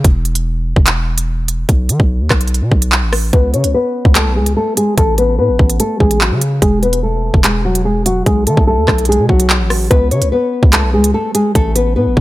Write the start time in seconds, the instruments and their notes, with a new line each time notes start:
0.04 808-style bass E1, kick, closed hi-hat
0.25 closed hi-hat
0.35 closed hi-hat
0.76 808-style bass E1, kick
0.87 clap, closed hi-hat
1.18 closed hi-hat
1.48 closed hi-hat
1.69 808-style bass B1, kick, closed hi-hat
1.89 808-style bass D#3, closed hi-hat
2.00 808-style bass B1, kick
2.20 808-style bass D#2
2.30 808-style bass B1, kick, cross-stick, clap
2.41 closed hi-hat
2.48 closed hi-hat
2.54 closed hi-hat
2.61 808-style bass B2
2.72 808-style bass B1, kick
2.82 closed hi-hat
2.92 clap
3.02 808-style bass A1
3.13 cross-stick, open hi-hat
3.33 808-style bass C#2, nylon-string guitar B3 B4, kick, closed hi-hat
3.54 808-style bass C#3, nylon-string guitar C#4 C#5, closed hi-hat
3.64 808-style bass C#2, closed hi-hat
3.74 nylon-string guitar B3 B4
4.05 808-style bass C#2, kick
4.15 nylon-string guitar A3 A4, clap, closed hi-hat
4.26 808-style bass B1
4.36 nylon-string guitar G#3 G#4
4.41 808-style bass C#2
4.46 closed hi-hat
4.57 nylon-string guitar A3 A4
4.77 nylon-string guitar G#3 G#4, closed hi-hat
4.98 808-style bass A1, nylon-string guitar A3 A4, kick, closed hi-hat
5.18 nylon-string guitar B3 B4, closed hi-hat
5.39 808-style bass A2, nylon-string guitar B3 B4
5.49 808-style bass A1
5.59 808-style bass A1, kick
5.70 closed hi-hat
5.80 nylon-string guitar A3 A4, closed hi-hat
6.00 808-style bass A1, nylon-string guitar G#3 G#4, kick
6.11 closed hi-hat
6.21 nylon-string guitar F#3 F#4, clap
6.31 808-style bass C#3
6.42 closed hi-hat
6.62 808-style bass E1, nylon-string guitar G#3 G#4, kick, closed hi-hat
6.83 nylon-string guitar B3 B4, closed hi-hat
6.93 closed hi-hat
7.03 nylon-string guitar A3 A4
7.34 808-style bass E1, kick
7.44 nylon-string guitar G#3 G#4, clap, closed hi-hat
7.65 nylon-string guitar F#3 F#4
7.75 closed hi-hat
7.85 nylon-string guitar G#3 G#4
8.06 nylon-string guitar F#3 F#4, closed hi-hat
8.26 808-style bass B1, nylon-string guitar G#3 G#4, kick, closed hi-hat
8.47 808-style bass D#3, nylon-string guitar A3 A4, closed hi-hat
8.57 808-style bass B1, kick
8.67 nylon-string guitar A3 A4
8.78 808-style bass D#2
8.88 808-style bass B1, kick, cross-stick, clap
8.98 closed hi-hat
9.05 nylon-string guitar G#4, closed hi-hat
9.10 nylon-string guitar G#3, closed hi-hat
9.19 808-style bass B2
9.29 808-style bass B1, nylon-string guitar F#3 F#4, kick
9.40 closed hi-hat
9.50 clap
9.60 808-style bass A1
9.70 cross-stick, open hi-hat
9.90 808-style bass C#2, nylon-string guitar B3 B4, kick, closed hi-hat
10.11 808-style bass C#3, nylon-string guitar C#4 C#5, closed hi-hat
10.22 808-style bass C#2, closed hi-hat
10.32 nylon-string guitar B3 B4
10.63 808-style bass C#2, kick
10.73 nylon-string guitar A3 A4, clap, closed hi-hat
10.83 808-style bass B1
10.94 nylon-string guitar G#3 G#4
10.99 808-style bass C#2
11.04 closed hi-hat
11.14 nylon-string guitar A3 A4
11.35 nylon-string guitar G#3 G#4, closed hi-hat
11.55 808-style bass A1, nylon-string guitar A3 A4, kick, closed hi-hat
11.76 nylon-string guitar B3 B4, closed hi-hat
11.96 808-style bass A2, nylon-string guitar B3 B4
12.06 808-style bass A1
12.17 808-style bass A1, kick